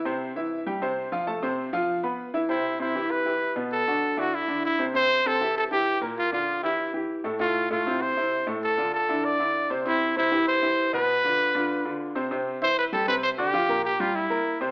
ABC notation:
X:1
M:4/4
L:1/16
Q:1/4=196
K:C
V:1 name="Trumpet"
z16 | z16 | E4 E4 B6 z2 | A6 ^F2 E4 E3 z |
c4 A4 A2 G4 z2 | F2 F4 E4 z6 | F4 F4 c6 z2 | A4 A4 d6 z2 |
E4 E4 c6 B2- | B12 z4 | z4 c2 B2 A2 B2 c2 G2- | G4 G2 F2 E6 z2 |]
V:2 name="Grand piano"
[C,Cc]4 [E,Ee]4 [G,Gg]2 [C,Cc]4 [F,Ff]2 | [A,Aa]2 [C,Cc]4 [F,Ff]4 [B,Bb]4 [E,Ee]2 | [C,Cc]4 [C,Cc]2 [E,EG]4 [E,EG]4 [B,,B,B]2- | [B,,B,B]2 [D,D^F]4 [D,DE]4 [D,DE]4 [C,Cc]2 |
[C,Cc]4 [C,Cc]2 [E,EG]4 [E,EG]4 [_B,,_B,_B]2- | [_B,,_B,_B]2 [D,DF]4 [E,EG]4 [E,EG]4 [A,,A,A]2 | [A,,A,A]4 [A,,A,A]2 [C,CE]4 [C,CE]4 [A,,A,A]2- | [A,,A,A]2 [D,DF]4 [D,DE]4 [D,DE]4 [C,Cc]2 |
[C,Cc]4 [C,Cc]2 [E,EG]4 [E,EG]4 [B,,B,B]2- | [B,,B,B]2 [D,DF]4 [D,DF]4 [D,DF]4 [C,Cc]2 | [C,Cc]4 [E,Ee]4 [G,Gg]2 [C,Cc]4 [D,Dd]2 | [F,Ff]2 [_B,,_B,_B]4 [G,Gg]4 [B,B_b]4 [C,Cc]2 |]